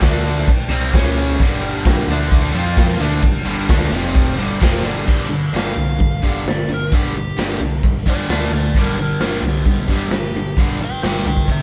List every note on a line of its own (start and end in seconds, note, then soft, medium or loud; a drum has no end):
0.01 0.44 D2 medium
0.01 0.47 D3 medium
0.01 0.47 A3 medium
0.01 0.48 D4 medium
0.01 kick loud
0.01 snare loud
0.01 crash medium
0.47 muted overdriven electric guitar stroke medium
0.47 kick loud
0.47 crash medium
0.69 0.91 C2 medium
0.69 0.92 C3 medium
0.69 0.93 G3 medium
0.69 0.93 C4 loud
0.93 1.36 C#2 loud
0.93 1.39 C#3 medium
0.93 1.39 G#3 loud
0.93 1.40 C#4 loud
0.93 kick loud
0.93 snare loud
0.93 crash medium
1.40 2.04 G1 loud
1.40 2.09 G2 medium
1.40 2.09 D3 medium
1.40 2.09 G3 loud
1.40 kick loud
1.40 crash medium
1.85 kick loud
1.85 snare loud
1.85 crash medium
2.07 2.50 D2 loud
2.07 2.55 D3 medium
2.07 2.54 A3 medium
2.12 2.55 D4 loud
2.31 kick loud
2.31 crash medium
2.54 2.97 F2 loud
2.54 2.99 F3 loud
2.54 3.00 C4 medium
2.54 3.01 F4 loud
2.77 kick loud
2.77 snare loud
2.77 crash medium
2.99 3.21 D2 medium
2.99 3.22 D3 medium
2.99 3.23 A3 medium
2.99 3.23 D4 loud
3.22 3.44 G1 medium
3.22 3.41 G2 medium
3.22 3.41 D3 medium
3.22 kick loud
3.22 crash medium
3.45 3.67 G1 loud
3.45 3.68 G2 medium
3.45 3.67 D3 medium
3.45 3.68 G3 medium
3.68 3.90 D2 medium
3.68 3.91 D3 medium
3.68 3.92 A3 medium
3.68 3.92 D4 loud
3.68 kick loud
3.68 snare loud
3.68 crash medium
3.90 4.34 F1 medium
3.90 4.37 F2 medium
3.90 4.37 C3 loud
3.90 4.38 F3 medium
4.15 kick loud
4.15 crash medium
4.37 4.59 G1 loud
4.37 4.59 G2 medium
4.37 4.60 D3 medium
4.37 4.60 G3 loud
4.59 4.83 F1 medium
4.59 4.82 F2 medium
4.59 4.83 C3 medium
4.59 4.83 F3 loud
4.59 kick loud
4.59 snare loud
4.59 crash medium
4.83 5.05 G1 medium
4.83 5.04 G2 medium
4.83 5.05 D3 medium
4.83 5.06 G3 medium
5.06 5.48 G1 medium
5.06 5.27 G2 medium
5.06 5.28 D3 medium
5.06 5.28 G3 medium
5.06 kick loud
5.06 crash loud
5.29 5.50 G2 medium
5.29 5.50 D3 medium
5.53 5.73 G1 medium
5.53 5.73 G2 medium
5.53 5.73 D3 medium
5.53 5.75 G3 medium
5.53 snare loud
5.53 open hi-hat medium
5.57 6.44 F5 loud
5.74 5.96 C2 medium
5.74 5.95 G2 medium
5.74 5.96 D3 medium
5.99 6.19 G1 medium
5.99 6.20 G2 medium
5.99 6.20 D3 medium
5.99 kick loud
5.99 open hi-hat medium
6.22 6.43 G1 medium
6.22 6.44 G2 medium
6.22 6.44 D3 medium
6.22 6.45 G3 medium
6.22 kick medium
6.44 6.65 G1 medium
6.44 6.66 G2 medium
6.44 6.66 D3 medium
6.44 snare loud
6.44 open hi-hat medium
6.48 6.69 D5 medium
6.67 6.88 G1 medium
6.67 6.89 G2 medium
6.67 6.89 D3 medium
6.74 6.93 A#4 medium
6.91 7.32 G1 medium
6.91 7.13 G2 medium
6.91 7.14 D3 medium
6.91 7.14 G3 medium
6.91 7.14 G4 medium
6.91 kick loud
6.91 open hi-hat medium
7.16 7.36 G2 medium
7.16 7.36 D3 medium
7.16 7.60 G4 loud
7.36 7.57 G1 medium
7.36 7.58 G2 medium
7.36 7.59 D3 medium
7.36 7.59 G3 medium
7.36 snare loud
7.36 open hi-hat medium
7.60 7.80 C2 medium
7.60 7.81 G2 medium
7.60 7.81 D3 medium
7.82 8.03 G1 medium
7.82 8.04 G2 medium
7.82 8.04 D3 medium
7.82 kick loud
7.82 open hi-hat medium
8.06 8.26 G1 medium
8.06 8.27 G2 loud
8.06 8.27 D3 loud
8.06 8.28 G3 loud
8.06 8.30 F4 medium
8.06 kick medium
8.10 8.30 D5 loud
8.28 8.48 D2 medium
8.28 8.50 D3 medium
8.28 8.50 A3 medium
8.28 8.51 D4 loud
8.28 snare loud
8.28 open hi-hat medium
8.33 8.52 F4 medium
8.33 8.53 D5 medium
8.51 8.71 D2 medium
8.51 8.72 D3 medium
8.51 8.72 A3 medium
8.51 8.74 F4 medium
8.55 8.75 D5 medium
8.74 9.15 G1 medium
8.74 8.97 G2 medium
8.74 8.97 D3 medium
8.74 kick loud
8.74 open hi-hat medium
8.78 8.98 G3 loud
8.78 8.99 D4 medium
8.78 9.00 A#4 medium
8.99 9.18 G2 medium
8.99 9.19 D3 medium
8.99 9.21 D4 medium
8.99 9.21 A#4 medium
9.19 9.40 G1 medium
9.19 9.41 G2 medium
9.19 9.42 D3 medium
9.19 9.43 G3 medium
9.19 9.43 D4 medium
9.19 9.43 A#4 medium
9.19 snare loud
9.19 open hi-hat medium
9.42 9.62 C2 medium
9.42 9.64 G2 medium
9.42 9.64 D3 medium
9.49 9.67 B3 medium
9.49 9.68 G4 medium
9.65 9.85 G1 medium
9.65 9.87 G2 medium
9.65 9.87 D3 medium
9.65 kick loud
9.65 open hi-hat medium
9.69 9.89 B3 medium
9.69 9.90 G4 medium
9.88 10.08 G1 medium
9.88 10.10 G2 medium
9.88 10.10 D3 medium
9.88 10.11 G3 medium
9.88 10.10 B3 medium
9.88 10.12 G4 medium
9.88 kick medium
10.10 10.31 G1 medium
10.10 10.32 G2 medium
10.10 10.32 D3 medium
10.10 10.56 G4 loud
10.10 snare loud
10.10 open hi-hat medium
10.34 10.54 G1 medium
10.34 10.55 G2 medium
10.34 10.56 D3 medium
10.56 10.97 G1 medium
10.56 10.79 G2 medium
10.56 10.79 D3 medium
10.56 10.80 G3 medium
10.56 kick loud
10.56 open hi-hat medium
10.81 11.01 G2 medium
10.81 11.01 D3 medium
10.81 11.04 B4 medium
10.81 11.03 G5 loud
11.02 11.23 G1 medium
11.02 11.25 G2 medium
11.02 11.25 D3 medium
11.02 11.25 G3 loud
11.02 11.25 B4 medium
11.02 11.26 G5 loud
11.02 snare loud
11.02 open hi-hat medium
11.25 11.45 C2 medium
11.25 11.46 G2 medium
11.25 11.47 D3 medium
11.25 11.48 B4 medium
11.25 11.48 G5 medium
11.37 kick medium
11.48 11.62 G1 medium
11.48 11.62 G2 medium
11.48 11.62 D3 medium
11.48 11.62 G4 medium
11.48 kick loud
11.48 open hi-hat medium
11.52 11.62 E5 medium